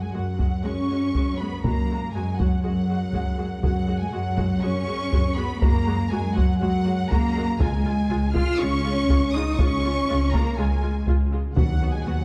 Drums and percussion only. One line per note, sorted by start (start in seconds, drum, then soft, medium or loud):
0.39 taiko medium
1.15 taiko medium
1.64 taiko medium
2.39 taiko medium
3.14 taiko medium
3.63 taiko medium
4.38 taiko medium
5.13 taiko medium
5.62 taiko medium
6.37 taiko medium
7.11 taiko medium
7.60 taiko medium
8.35 taiko medium
9.10 taiko medium
9.59 taiko medium
10.33 taiko medium
11.07 taiko medium
11.56 taiko medium